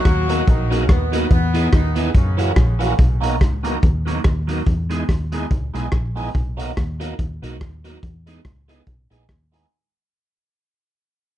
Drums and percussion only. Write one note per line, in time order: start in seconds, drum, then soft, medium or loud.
0.05 kick loud
0.05 cross-stick loud
0.05 closed hi-hat medium
0.29 closed hi-hat medium
0.47 kick loud
0.47 closed hi-hat medium
0.72 closed hi-hat medium
0.89 kick loud
0.89 cross-stick loud
0.89 closed hi-hat medium
1.13 closed hi-hat loud
1.31 kick loud
1.31 closed hi-hat medium
1.54 closed hi-hat medium
1.73 kick loud
1.73 cross-stick loud
1.73 closed hi-hat medium
1.96 closed hi-hat medium
2.14 kick loud
2.14 closed hi-hat medium
2.39 closed hi-hat medium
2.56 kick loud
2.56 cross-stick loud
2.56 closed hi-hat medium
2.81 closed hi-hat medium
2.99 kick loud
2.99 closed hi-hat medium
3.23 closed hi-hat loud
3.41 kick loud
3.41 cross-stick medium
3.41 closed hi-hat medium
3.64 closed hi-hat medium
3.83 kick loud
3.83 closed hi-hat medium
4.08 closed hi-hat medium
4.24 kick loud
4.24 cross-stick loud
4.24 closed hi-hat medium
4.49 closed hi-hat loud
4.66 kick loud
4.66 closed hi-hat medium
4.91 closed hi-hat medium
5.09 kick medium
5.09 cross-stick medium
5.09 closed hi-hat medium
5.32 closed hi-hat loud
5.51 kick loud
5.51 closed hi-hat medium
5.75 closed hi-hat medium
5.92 kick loud
5.92 cross-stick loud
5.92 closed hi-hat medium
6.17 open hi-hat medium
6.35 kick loud
6.35 closed hi-hat medium
6.59 closed hi-hat loud
6.77 kick loud
6.77 cross-stick loud
6.77 closed hi-hat medium
7.01 closed hi-hat medium
7.19 kick loud
7.19 closed hi-hat medium
7.43 closed hi-hat medium
7.61 kick loud
7.61 cross-stick loud
7.61 closed hi-hat medium
7.85 closed hi-hat medium
8.03 kick loud
8.03 closed hi-hat medium
8.27 closed hi-hat medium
8.45 kick loud
8.45 cross-stick loud
8.45 closed hi-hat medium
8.69 closed hi-hat medium
8.87 kick loud
8.87 closed hi-hat medium
9.11 closed hi-hat medium
9.29 kick loud
9.29 cross-stick loud
9.29 closed hi-hat medium
9.53 closed hi-hat loud